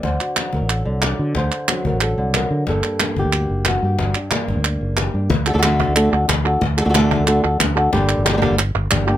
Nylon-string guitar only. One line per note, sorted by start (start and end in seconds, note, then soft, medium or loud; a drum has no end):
0.03 0.84 D3 medium
0.03 0.87 C5 medium
0.21 1.19 F#4 soft
0.36 1.33 F#3 soft
0.55 0.71 A#4 medium
0.71 1.36 A4 medium
0.85 1.33 D3 soft
1.04 1.36 D5 medium
1.20 1.34 F#4 soft
1.35 2.17 D3 medium
1.35 2.19 C5 medium
1.69 2.65 F#3 medium
1.69 2.66 F#4 soft
1.87 2.02 A#4 medium
2.03 2.35 A4 medium
2.18 2.65 D3 soft
2.36 2.68 A#4 medium
2.67 3.49 G2 medium
2.67 3.00 A#3 soft
2.67 2.84 D4 soft
2.67 3.35 A4 medium
2.85 3.99 D4 soft
3.00 3.97 A#3 medium
3.19 3.67 G4 medium
3.35 3.67 F#4 medium
3.68 4.16 F#4 medium
3.84 4.96 G4 medium
3.99 4.81 G2 medium
3.99 4.15 D4 soft
4.16 4.31 D4 soft
4.32 5.29 A#3 medium
4.32 4.48 D4 soft
4.49 4.64 D4 soft
4.65 5.13 D4 soft
4.98 5.28 G4 soft
5.15 5.29 D4 soft
5.30 muted nylon-string guitar stroke medium
5.46 5.52 A3 medium
5.46 5.50 D4 medium
5.46 5.49 F#4 medium
5.46 5.49 A4 medium
5.46 5.54 A4 medium
5.53 5.57 A3 medium
5.53 5.57 D4 medium
5.53 5.58 F#4 medium
5.53 5.58 A4 medium
5.58 5.62 A3 medium
5.58 5.62 D4 medium
5.58 5.62 F#4 medium
5.58 5.63 A4 medium
5.62 5.94 D3 medium
5.62 5.95 A3 medium
5.62 5.95 D4 medium
5.62 5.96 F#4 medium
5.62 5.96 A4 medium
5.95 6.11 D3 medium
5.95 6.12 A3 medium
5.95 6.12 D4 medium
5.95 6.11 F#4 medium
5.95 6.10 A4 medium
6.12 6.27 D4 soft
6.12 6.27 F#4 medium
6.12 6.27 A4 medium
6.28 muted nylon-string guitar stroke medium
6.45 6.61 D4 soft
6.45 6.61 F#4 medium
6.45 6.61 A4 medium
6.61 muted nylon-string guitar stroke medium
6.77 6.84 A3 medium
6.77 6.81 D4 soft
6.77 6.80 F#4 medium
6.77 6.85 F#4 medium
6.77 6.80 A4 medium
6.82 6.88 A3 medium
6.82 6.89 D4 medium
6.82 6.85 A4 medium
6.86 6.93 A3 medium
6.86 6.89 F#4 medium
6.86 6.89 A4 medium
6.90 7.25 D3 medium
6.90 6.93 D4 medium
6.90 6.94 F#4 medium
6.90 6.94 A4 medium
6.94 7.26 A3 loud
6.94 7.26 D4 loud
6.94 7.27 F#4 loud
6.94 7.27 A4 loud
7.26 7.42 D3 medium
7.26 7.43 A3 medium
7.26 7.43 D4 medium
7.26 7.43 F#4 medium
7.26 7.42 A4 medium
7.43 7.59 D4 soft
7.43 7.59 F#4 medium
7.43 7.59 A4 medium
7.59 muted nylon-string guitar stroke medium
7.76 7.92 D4 medium
7.76 7.92 F#4 medium
7.76 7.92 A4 medium
7.92 8.25 D3 medium
7.92 8.25 G3 medium
7.92 8.25 A#3 loud
7.92 8.24 D4 medium
7.92 8.24 G4 medium
8.25 8.31 G3 medium
8.25 8.29 A#3 soft
8.25 8.28 D4 medium
8.25 8.28 G4 medium
8.29 8.36 G3 medium
8.29 8.32 D4 medium
8.29 8.33 G4 medium
8.33 8.41 G3 medium
8.33 8.37 A#3 medium
8.33 8.37 D4 medium
8.33 8.37 G4 medium
8.38 8.57 D3 medium
8.38 8.41 A#3 medium
8.38 8.41 D4 medium
8.38 8.42 G4 medium
8.42 8.57 G3 medium
8.42 8.57 A#3 medium
8.42 8.58 D4 medium
8.42 8.58 G4 medium
8.58 muted nylon-string guitar stroke medium
8.90 9.06 G3 medium
8.90 9.07 A#3 medium
8.90 9.07 D4 medium
8.90 9.06 G4 medium
9.07 9.17 A#3 soft
9.07 9.17 D4 medium
9.07 9.17 G4 medium